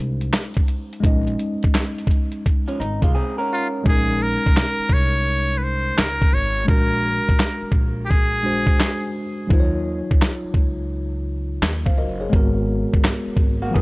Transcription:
Already playing: C2 G#3 C#4 D#4 C5
0.21 closed hi-hat
0.33 snare, clap, closed hi-hat
0.54 kick, closed hi-hat
0.68 closed hi-hat
0.93 closed hi-hat
1.00 A#1 G#3 C#4, kick
1.04 D#4 D#5, closed hi-hat
1.27 closed hi-hat
1.39 closed hi-hat
1.63 kick, closed hi-hat
1.74 snare, clap, closed hi-hat
1.98 closed hi-hat
2.07 kick, closed hi-hat
2.32 closed hi-hat
2.46 kick, closed hi-hat
2.68 F3 C#4, closed hi-hat
2.80 G#1 D#4, closed hi-hat
3.02 C2 G#3 F4, kick, closed hi-hat
3.15 C4 G#4
3.38 C#4 A#4
3.53 F4
3.84 A#1 G#3 C#4, kick
3.88 D#4 G#4 A#4
4.23 A#4
4.46 C2, kick
4.57 snare, clap
4.79 muted upright bass stroke
4.89 C2 C#5, kick
5.58 B4
5.63 C5
5.98 C#2 A#4, snare, clap
6.22 kick
6.32 G#1 C#5
6.65 A#1 G#3 D4 F#4, kick
6.69 A#4
7.29 A#1, kick
7.39 snare, clap
7.62 muted upright bass stroke
7.72 A#1, kick
8.05 G4
8.10 G#4, kick
8.43 G#3 D4 F#4 C5
8.67 kick
8.80 snare, clap
9.47 D#2 F#3 D#4 F4, kick
9.54 C5
9.60 C#5
10.11 C#2, kick
10.22 snare, clap
10.44 muted upright bass stroke
10.54 C#2, kick
11.62 D#2, snare, clap
11.86 C5 F5, kick
11.98 F#1 A#4 D#5
12.21 G#4 C#5
12.30 G#1 G#3 B3 F#4, kick
12.36 A#4
12.93 G#1, kick
13.04 snare, clap
13.26 muted upright bass stroke
13.36 G#1, kick
13.62 A#3 F#4
13.71 F3 B3 G#4
13.75 C#2 B3 D#4 A#4, kick

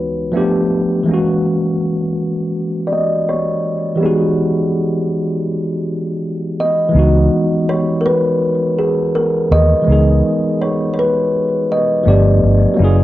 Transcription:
Already playing: C#2 E3 G#3 B3 D#4 F#4 B4
0.32 F3 A3 B3 D4
0.37 G4
1.03 E3 G#3
1.09 A#3 C#4
1.14 F#4
2.87 D5
2.93 D#5
3.29 C#5
3.95 E3 G3 G4
4.01 B3 D#4 G#4
4.05 G#3 F#4
6.60 D#5
6.89 E3 G#3
6.94 C#2 B3 D#4
6.99 F#4
7.69 C#5
8.01 A#4
8.06 B4
8.79 G#4
9.15 A#4
9.51 D#2 D#5
9.82 E3 G#3
9.87 C#2 B3 D#4
9.92 G#4
10.62 C#5
10.94 C#5
10.99 B4
11.72 D#5
12.03 G1 F3 A3 B3
12.07 D4 G4 D5
12.43 G1
12.74 F#3 A#3
12.79 F#1 C#4 E4
12.84 G#4

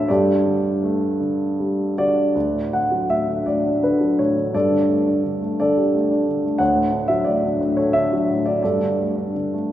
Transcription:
Already playing: A2 D3 F#3 A4 C#5 E5 F#5
0.08 G2 G4 A4 D5
0.46 D3
0.83 A3
1.20 D3
1.60 G3
1.98 D3 F#4 D5
2.35 D2
2.54 A2
2.73 D3 F#5
2.92 F#3
3.10 A2 E5
3.28 D3
3.46 A2 D5
3.65 D4
3.83 D3 B4
4.01 F#3
4.19 A2 C#5
4.36 D3
4.54 G2 A4 D5
4.72 D3
4.89 A3
5.07 D4
5.24 D3
5.41 A3
5.60 D3 A4 D5
5.77 G4
5.94 A3
6.11 D4
6.28 D3
6.44 A3
6.58 D2 C#5 F#5
6.75 A2
6.93 D3
7.08 F#3 E5
7.24 A2 D5
7.44 D3
7.61 A2
7.77 A4 C#5
7.93 D3 E5
8.13 F#3
8.30 A2
8.46 D3 D5
8.63 G2 A4 D5
8.81 D3
8.99 A3
9.16 D4
9.35 D3
9.54 A3

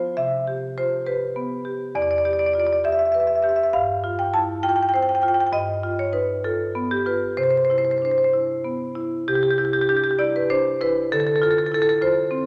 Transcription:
Already playing: F3 F4 C5
0.17 C3 E5
0.47 G4
0.78 F4 C5
1.06 G4 B4
1.36 B3
1.65 G4
1.95 E2 D5
2.02 D5
2.11 D5
2.18 D5
2.25 G4 D5
2.33 D5
2.39 D5
2.46 D5
2.53 F4 D5
2.60 D5
2.67 D5
2.73 D5
2.84 G4 E5
2.92 E5
2.99 E5
3.06 E5
3.12 B4 E5
3.20 E5
3.27 E5
3.35 E5
3.42 G4 E5
3.49 E5
3.56 E5
3.64 E5
3.73 G2 F5
4.04 F4
4.19 G5
4.34 E4 A5
4.63 F4 G5
4.69 G5
4.76 G5
4.83 G5
4.89 G5
4.94 C5 G5
5.03 G5
5.09 G5
5.15 G5
5.22 F4 G5
5.28 G5
5.34 G5
5.40 G5
5.47 G5
5.53 G2 D#5
5.83 F4
5.99 C#5
6.13 D#4 B4
6.44 F4 A4
6.75 B3
6.91 G4
7.06 F4 B4
7.37 C3 C5
7.44 C5
7.51 C5
7.57 C5
7.65 C5
7.70 E4 C5
7.78 C5
7.85 C5
7.91 C5
7.98 C5
8.02 D4 C5
8.11 C5
8.18 C5
8.24 C5
8.33 E4
8.64 B3
8.95 E4
9.28 C3 G4
9.35 G4
9.43 G4
9.51 G4
9.58 E4 G4
9.65 G4
9.73 G4
9.81 G4
9.89 D4 G4
9.97 G4
10.04 G4
10.11 G4
10.19 E4 D5
10.36 B4
10.50 D4 C5
10.81 E4 B4
11.12 D3 A4
11.20 A4
11.27 A4
11.36 A4
11.42 F4 A4
11.51 A4
11.58 A4
11.66 A4
11.72 E4 A4
11.82 A4
11.89 A4
12.02 F4 C5
12.31 C4

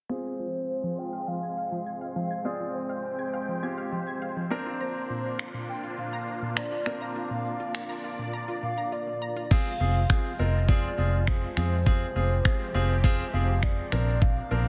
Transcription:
0.09 G#3 C4 F4 G#4 C5 G#6
0.39 F3
0.84 F3
0.98 G5
1.13 F5
1.28 F3 F5
1.42 G#6
1.57 F5
1.72 F3
1.86 G#6
2.01 F5
2.16 F3 F5
2.31 G#6
2.45 C4 F4 G#4 D5 F5 G5
2.60 F3
2.75 C5
2.89 F5
3.19 G#6
3.34 F5
3.48 F3
3.62 C4 F4 G4 G#6
3.78 F5
3.92 F3
4.07 G#6
4.22 F5
4.37 F3
4.50 A#3 C4 D4 F4 A#4 A#5
4.66 F4
4.81 C5 A#5
5.10 A#2
5.39 finger snap
5.54 A#2
5.69 G5
5.83 F4
5.98 A#2 F5
6.13 A#5
6.28 F4
6.42 A#2
6.57 D5 A#5, finger snap
6.72 F4
6.86 A#2 C4 D4 A#4 D5, finger snap
7.01 F5 A#5
7.16 F4 F5
7.31 A#2
7.60 F4
7.75 finger snap
7.89 A#5
8.04 F4
8.19 A#2
8.33 A#5
8.48 F4
8.63 A#2 F5
8.78 A#5
8.92 F4 D5
9.07 A#2
9.22 A#5
9.36 F4
9.51 C3 F3 G#3 C4 F4 G#4 F5, kick, crash
9.80 F1 C4 F4 G#4
10.10 C4 F4 G#4, finger snap, kick
10.39 F1 C4 F4 A#4 D#5
10.68 C4 F4 G#4 D5, kick
10.98 F1 C4 F4 G#4
11.27 C4 F4 G#4 C5, finger snap, kick
11.57 F2 C4 F4 G#4, finger snap
11.86 C4 F4 G4 G#4, kick
12.16 F1 C4 F4 G#4
12.45 C4 F4 G#4, finger snap, kick
12.74 F1 C4 F4 G#4
13.04 C4 F4 G#4, kick
13.33 F1 C4 F4 G#4 F5
13.63 C4 F4 G#4 D5, finger snap, kick
13.92 A#1 A#3 C4 D4 A#4, finger snap
14.22 F5, kick
14.51 A#1 C4 D4 A#4

